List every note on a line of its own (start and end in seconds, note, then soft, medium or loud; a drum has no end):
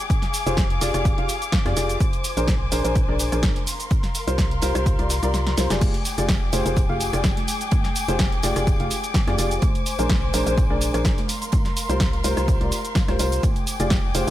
0.00 1.97 G#4 medium
0.00 3.63 D6 medium
0.10 1.99 F5 medium
0.10 kick loud
0.10 closed hi-hat medium
0.10 shaker soft
0.22 snare soft
0.22 snare medium
0.22 closed hi-hat medium
0.34 closed hi-hat medium
0.34 open hi-hat loud
0.34 shaker medium
0.46 0.79 F1 loud
0.46 0.60 F4 medium
0.46 0.60 G4 medium
0.46 0.60 G#4 medium
0.46 0.60 C5 loud
0.46 closed hi-hat medium
0.46 shaker soft
0.57 kick loud
0.57 snare loud
0.57 closed hi-hat medium
0.57 shaker soft
0.70 closed hi-hat soft
0.81 0.92 F1 loud
0.81 0.91 F4 medium
0.81 0.91 G4 medium
0.81 0.91 G#4 medium
0.81 0.91 D5 loud
0.81 closed hi-hat medium
0.81 open hi-hat loud
0.81 shaker medium
0.94 1.15 F1 loud
0.94 1.15 F4 medium
0.94 1.15 G4 medium
0.94 1.15 G#4 medium
0.94 1.15 D5 loud
0.94 cross-stick medium
0.94 closed hi-hat medium
0.94 shaker soft
1.05 kick loud
1.05 closed hi-hat medium
1.05 shaker soft
1.18 1.29 F1 loud
1.18 1.31 F4 medium
1.18 1.31 G4 medium
1.18 1.31 G#4 medium
1.18 1.31 F5 medium
1.18 closed hi-hat soft
1.29 closed hi-hat medium
1.29 open hi-hat loud
1.29 shaker medium
1.42 closed hi-hat medium
1.42 shaker soft
1.52 kick loud
1.52 snare loud
1.52 closed hi-hat medium
1.52 shaker soft
1.66 1.74 F2 loud
1.66 1.74 F4 loud
1.66 1.74 G4 medium
1.66 1.74 G#4 medium
1.66 1.74 D5 loud
1.66 cross-stick medium
1.66 snare medium
1.66 closed hi-hat medium
1.77 1.97 F1 loud
1.77 1.99 F4 loud
1.77 1.99 G4 medium
1.77 1.99 G#4 medium
1.77 1.99 D5 loud
1.77 closed hi-hat medium
1.77 open hi-hat loud
1.77 shaker medium
1.89 closed hi-hat medium
1.89 shaker soft
2.00 3.66 C5 medium
2.00 3.66 G#5 medium
2.00 kick loud
2.00 closed hi-hat medium
2.00 shaker soft
2.13 closed hi-hat soft
2.13 closed hi-hat medium
2.24 closed hi-hat medium
2.24 open hi-hat loud
2.24 shaker medium
2.37 2.70 A#1 loud
2.37 2.50 D4 medium
2.37 2.50 G#4 medium
2.37 2.50 A#4 medium
2.37 2.50 C5 medium
2.37 closed hi-hat medium
2.37 shaker soft
2.48 kick loud
2.48 snare loud
2.48 closed hi-hat medium
2.48 shaker soft
2.72 2.82 A#1 medium
2.72 2.83 D4 loud
2.72 2.83 G#4 medium
2.72 2.83 A#4 medium
2.72 2.83 C5 loud
2.72 closed hi-hat medium
2.72 open hi-hat loud
2.72 shaker medium
2.85 3.06 A#1 loud
2.85 2.98 D4 medium
2.85 2.98 G#4 medium
2.85 2.98 A#4 medium
2.85 2.98 C5 medium
2.85 closed hi-hat medium
2.85 shaker soft
2.95 kick loud
2.95 closed hi-hat medium
2.95 shaker soft
3.08 3.30 A#1 loud
3.08 3.29 D4 medium
3.08 3.29 G#4 medium
3.08 3.29 A#4 medium
3.08 3.29 D5 loud
3.19 closed hi-hat medium
3.19 open hi-hat loud
3.19 shaker medium
3.32 3.52 A#1 loud
3.32 3.55 D4 medium
3.32 3.55 G#4 medium
3.32 3.55 A#4 medium
3.32 3.55 C5 medium
3.32 cross-stick medium
3.32 closed hi-hat medium
3.32 shaker soft
3.43 kick loud
3.43 snare loud
3.43 closed hi-hat medium
3.43 shaker soft
3.56 snare soft
3.56 closed hi-hat medium
3.67 5.79 A#4 medium
3.67 5.79 F5 medium
3.67 5.79 C6 medium
3.67 closed hi-hat medium
3.67 open hi-hat loud
3.67 shaker medium
3.80 closed hi-hat medium
3.80 closed hi-hat soft
3.80 shaker soft
3.91 kick loud
3.91 closed hi-hat medium
3.91 shaker soft
4.03 snare soft
4.03 snare medium
4.03 closed hi-hat medium
4.15 closed hi-hat medium
4.15 open hi-hat loud
4.15 shaker medium
4.27 4.60 C2 loud
4.27 4.41 F4 medium
4.27 4.41 G4 medium
4.27 4.41 A#4 medium
4.27 4.41 C5 loud
4.27 closed hi-hat medium
4.27 shaker soft
4.38 kick loud
4.38 snare loud
4.38 closed hi-hat medium
4.38 shaker soft
4.51 closed hi-hat soft
4.62 4.73 C2 loud
4.62 4.72 F4 loud
4.62 4.72 G4 medium
4.62 4.72 A#4 medium
4.62 4.72 C5 loud
4.62 closed hi-hat medium
4.62 open hi-hat loud
4.62 shaker medium
4.75 4.96 C2 medium
4.75 4.96 F4 medium
4.75 4.96 G4 medium
4.75 4.96 A#4 medium
4.75 4.96 C5 loud
4.75 cross-stick medium
4.75 closed hi-hat medium
4.75 shaker soft
4.86 kick loud
4.86 closed hi-hat medium
4.86 shaker soft
4.99 5.20 C2 loud
4.99 5.12 F4 medium
4.99 5.12 G4 medium
4.99 5.12 A#4 medium
4.99 5.12 D5 medium
4.99 closed hi-hat soft
5.10 snare loud
5.10 closed hi-hat medium
5.10 open hi-hat loud
5.10 shaker medium
5.23 5.55 C2 loud
5.23 5.55 F4 medium
5.23 5.55 G4 medium
5.23 5.55 A#4 medium
5.23 5.55 D5 medium
5.23 closed hi-hat medium
5.23 shaker soft
5.34 snare medium
5.34 closed hi-hat medium
5.34 shaker soft
5.47 snare medium
5.47 closed hi-hat medium
5.58 5.68 C2 loud
5.58 5.67 F4 medium
5.58 5.67 G4 medium
5.58 5.67 A#4 medium
5.58 5.67 C5 medium
5.58 snare medium
5.58 closed hi-hat medium
5.58 open hi-hat loud
5.58 shaker medium
5.70 5.90 F1 medium
5.70 5.93 F4 loud
5.70 5.93 G4 medium
5.70 5.93 G#4 medium
5.70 5.93 D5 loud
5.70 snare medium
5.70 closed hi-hat soft
5.70 closed hi-hat medium
5.70 shaker soft
5.81 9.59 G#4 medium
5.81 9.59 G5 medium
5.81 11.25 D6 medium
5.81 kick loud
5.81 closed hi-hat medium
5.81 crash medium
5.81 tambourine medium
5.81 high conga medium
5.81 shaker soft
5.94 closed hi-hat soft
5.94 closed hi-hat medium
5.94 tambourine soft
6.05 closed hi-hat medium
6.05 open hi-hat loud
6.05 tambourine medium
6.05 shaker medium
6.18 6.51 F1 loud
6.18 6.31 F4 medium
6.18 6.31 G4 medium
6.18 6.31 G#4 medium
6.18 6.31 D5 medium
6.18 closed hi-hat medium
6.18 tambourine soft
6.18 high conga medium
6.18 shaker soft
6.29 kick loud
6.29 snare loud
6.29 closed hi-hat medium
6.29 tambourine medium
6.29 shaker soft
6.41 tambourine soft
6.53 6.63 F1 loud
6.53 6.64 F4 medium
6.53 6.64 G4 medium
6.53 6.64 G#4 medium
6.53 6.64 C5 loud
6.53 closed hi-hat medium
6.53 open hi-hat loud
6.53 tambourine medium
6.53 high conga loud
6.53 shaker medium
6.66 6.87 F1 loud
6.66 6.79 F4 medium
6.66 6.79 G4 medium
6.66 6.79 G#4 medium
6.66 6.79 C5 medium
6.66 closed hi-hat medium
6.66 tambourine soft
6.66 shaker soft
6.76 kick loud
6.76 closed hi-hat medium
6.76 tambourine medium
6.76 shaker soft
6.89 7.11 F1 loud
6.89 7.10 F4 medium
6.89 7.10 G4 medium
6.89 7.10 G#4 medium
6.89 7.10 F5 loud
6.89 tambourine soft
6.89 high conga medium
7.00 closed hi-hat medium
7.00 open hi-hat loud
7.00 tambourine medium
7.00 shaker medium
7.13 7.33 F1 loud
7.13 7.36 F4 medium
7.13 7.36 G4 medium
7.13 7.36 G#4 medium
7.13 7.36 D5 medium
7.13 cross-stick medium
7.13 closed hi-hat medium
7.13 tambourine soft
7.13 shaker soft
7.24 kick loud
7.24 snare loud
7.24 closed hi-hat medium
7.24 tambourine medium
7.24 shaker soft
7.37 snare soft
7.37 closed hi-hat medium
7.37 tambourine soft
7.37 high conga loud
7.48 closed hi-hat medium
7.48 open hi-hat loud
7.48 tambourine medium
7.48 shaker medium
7.61 closed hi-hat soft
7.61 closed hi-hat medium
7.61 tambourine soft
7.61 shaker soft
7.71 kick loud
7.71 closed hi-hat loud
7.71 tambourine medium
7.71 high conga medium
7.71 shaker soft
7.84 snare soft
7.84 snare medium
7.84 closed hi-hat medium
7.84 tambourine soft
7.95 closed hi-hat medium
7.95 open hi-hat loud
7.95 tambourine loud
7.95 shaker medium
8.08 8.41 F1 loud
8.08 8.22 F4 medium
8.08 8.22 G4 medium
8.08 8.22 G#4 medium
8.08 8.22 C5 loud
8.08 closed hi-hat medium
8.08 tambourine soft
8.08 high conga medium
8.08 shaker soft
8.19 kick loud
8.19 snare loud
8.19 closed hi-hat medium
8.19 tambourine medium
8.19 shaker soft
8.32 closed hi-hat soft
8.32 tambourine soft
8.43 8.54 F1 loud
8.43 8.53 F4 loud
8.43 8.53 G4 medium
8.43 8.53 G#4 medium
8.43 8.53 D5 loud
8.43 closed hi-hat medium
8.43 open hi-hat loud
8.43 tambourine loud
8.43 high conga loud
8.43 shaker medium
8.56 8.77 F1 loud
8.56 8.77 F4 medium
8.56 8.77 G4 medium
8.56 8.77 G#4 medium
8.56 8.77 D5 loud
8.56 cross-stick medium
8.56 closed hi-hat medium
8.56 tambourine soft
8.56 shaker soft
8.67 kick loud
8.67 closed hi-hat medium
8.67 tambourine medium
8.67 shaker soft
8.80 8.91 F1 loud
8.80 8.93 F4 medium
8.80 8.93 G4 medium
8.80 8.93 G#4 medium
8.80 8.93 F5 medium
8.80 closed hi-hat soft
8.80 tambourine soft
8.80 high conga medium
8.90 closed hi-hat medium
8.90 open hi-hat loud
8.90 tambourine loud
8.90 shaker medium
9.04 closed hi-hat medium
9.04 tambourine soft
9.04 shaker soft
9.14 kick loud
9.14 snare loud
9.14 closed hi-hat medium
9.14 tambourine soft
9.14 shaker soft
9.27 9.36 F2 loud
9.27 9.36 F4 loud
9.27 9.36 G4 medium
9.27 9.36 G#4 medium
9.27 9.36 D5 loud
9.27 cross-stick medium
9.27 snare medium
9.27 closed hi-hat medium
9.27 tambourine soft
9.27 high conga medium
9.38 9.59 F1 loud
9.38 9.61 F4 loud
9.38 9.61 G4 medium
9.38 9.61 G#4 medium
9.38 9.61 D5 loud
9.38 closed hi-hat medium
9.38 open hi-hat loud
9.38 tambourine medium
9.38 shaker medium
9.51 closed hi-hat medium
9.51 tambourine soft
9.51 shaker soft
9.62 11.27 C5 medium
9.62 11.27 G#5 medium
9.62 kick loud
9.62 closed hi-hat loud
9.62 tambourine medium
9.62 high conga loud
9.62 shaker soft
9.75 closed hi-hat medium
9.75 closed hi-hat soft
9.75 tambourine soft
9.86 closed hi-hat medium
9.86 open hi-hat loud
9.86 tambourine medium
9.86 shaker medium
9.99 10.32 A#1 loud
9.99 10.12 D4 medium
9.99 10.12 G#4 medium
9.99 10.12 A#4 medium
9.99 10.12 C5 medium
9.99 closed hi-hat medium
9.99 tambourine soft
9.99 high conga medium
9.99 shaker soft
10.09 kick loud
10.09 snare loud
10.09 closed hi-hat medium
10.09 tambourine medium
10.09 shaker soft
10.22 tambourine soft
10.34 10.44 A#1 loud
10.34 10.45 D4 loud
10.34 10.45 G#4 medium
10.34 10.45 A#4 medium
10.34 10.45 C5 loud
10.34 closed hi-hat medium
10.34 open hi-hat loud
10.34 tambourine loud
10.34 high conga medium
10.34 shaker medium
10.46 10.68 A#1 loud
10.46 10.60 D4 medium
10.46 10.60 G#4 medium
10.46 10.60 A#4 medium
10.46 10.60 C5 medium
10.46 closed hi-hat medium
10.46 tambourine soft
10.46 shaker soft
10.58 kick loud
10.58 closed hi-hat medium
10.58 tambourine medium
10.58 shaker soft
10.70 10.92 A#1 loud
10.70 10.91 D4 medium
10.70 10.91 G#4 medium
10.70 10.91 A#4 medium
10.70 10.91 D5 loud
10.70 tambourine soft
10.70 high conga medium
10.81 closed hi-hat medium
10.81 open hi-hat loud
10.81 tambourine loud
10.81 shaker medium
10.94 11.14 A#1 medium
10.94 11.17 D4 medium
10.94 11.17 G#4 medium
10.94 11.17 A#4 medium
10.94 11.17 C5 medium
10.94 cross-stick medium
10.94 closed hi-hat medium
10.94 tambourine soft
10.94 shaker soft
11.05 kick loud
11.05 snare loud
11.05 closed hi-hat medium
11.05 tambourine medium
11.05 shaker soft
11.17 snare medium
11.17 closed hi-hat medium
11.17 tambourine soft
11.17 high conga medium
11.29 13.41 A#4 medium
11.29 13.41 F5 medium
11.29 13.41 C6 medium
11.29 closed hi-hat medium
11.29 open hi-hat loud
11.29 tambourine medium
11.29 shaker medium
11.42 closed hi-hat medium
11.42 closed hi-hat soft
11.42 tambourine soft
11.42 shaker soft
11.52 kick loud
11.52 closed hi-hat medium
11.52 tambourine medium
11.52 high conga medium
11.52 shaker soft
11.65 snare soft
11.65 snare medium
11.65 closed hi-hat medium
11.65 tambourine soft
11.77 closed hi-hat medium
11.77 open hi-hat loud
11.77 tambourine loud
11.77 shaker medium
11.89 12.22 C2 loud
11.89 12.03 F4 medium
11.89 12.03 G4 medium
11.89 12.03 A#4 medium
11.89 12.03 C5 loud
11.89 closed hi-hat medium
11.89 tambourine soft
11.89 high conga medium
11.89 shaker soft
12.00 kick loud
12.00 snare loud
12.00 closed hi-hat medium
12.00 tambourine medium
12.00 shaker soft
12.13 closed hi-hat soft
12.13 tambourine soft
12.24 12.35 C2 loud
12.24 12.34 F4 loud
12.24 12.34 G4 medium
12.24 12.34 A#4 medium
12.24 12.34 C5 loud
12.24 closed hi-hat medium
12.24 open hi-hat loud
12.24 tambourine loud
12.24 high conga medium
12.24 shaker medium
12.37 12.58 C2 loud
12.37 12.58 F4 medium
12.37 12.58 G4 medium
12.37 12.58 A#4 medium
12.37 12.58 C5 loud
12.37 cross-stick medium
12.37 closed hi-hat medium
12.37 tambourine soft
12.37 shaker soft
12.48 kick loud
12.48 closed hi-hat medium
12.48 tambourine medium
12.48 shaker soft
12.61 12.72 C2 loud
12.61 12.74 F4 medium
12.61 12.74 G4 medium
12.61 12.74 A#4 medium
12.61 12.74 D5 medium
12.61 closed hi-hat soft
12.61 tambourine soft
12.61 high conga medium
12.72 closed hi-hat medium
12.72 open hi-hat loud
12.72 tambourine loud
12.72 shaker medium
12.84 closed hi-hat medium
12.84 tambourine soft
12.84 shaker soft
12.95 kick loud
12.95 snare loud
12.95 closed hi-hat medium
12.95 tambourine medium
12.95 shaker soft
13.08 13.17 C2 loud
13.08 13.17 F4 medium
13.08 13.17 G4 medium
13.08 13.17 A#4 medium
13.08 13.17 C5 loud
13.08 cross-stick medium
13.08 snare medium
13.08 closed hi-hat medium
13.08 tambourine soft
13.08 high conga medium
13.19 13.40 C2 loud
13.19 13.42 F4 medium
13.19 13.42 G4 medium
13.19 13.42 A#4 medium
13.19 13.42 C5 loud
13.19 closed hi-hat medium
13.19 open hi-hat loud
13.19 tambourine loud
13.19 shaker medium
13.32 closed hi-hat medium
13.32 tambourine soft
13.32 shaker soft
13.43 14.30 G#4 medium
13.43 14.30 G5 medium
13.43 14.30 D6 medium
13.43 kick loud
13.43 closed hi-hat medium
13.43 tambourine soft
13.43 high conga medium
13.43 shaker soft
13.56 closed hi-hat soft
13.56 closed hi-hat medium
13.56 tambourine soft
13.67 closed hi-hat medium
13.67 open hi-hat loud
13.67 tambourine loud
13.67 shaker medium
13.80 14.13 F1 loud
13.80 13.93 F4 medium
13.80 13.93 G4 medium
13.80 13.93 G#4 medium
13.80 13.93 D5 medium
13.80 closed hi-hat medium
13.80 tambourine soft
13.80 high conga medium
13.80 shaker soft
13.90 kick loud
13.90 snare loud
13.90 closed hi-hat medium
13.90 tambourine medium
13.90 shaker soft
14.04 tambourine soft
14.15 14.25 F1 loud
14.15 14.26 F4 loud
14.15 14.26 G4 medium
14.15 14.26 G#4 medium
14.15 14.26 C5 loud
14.15 closed hi-hat medium
14.15 open hi-hat loud
14.15 tambourine medium
14.15 high conga medium
14.15 shaker medium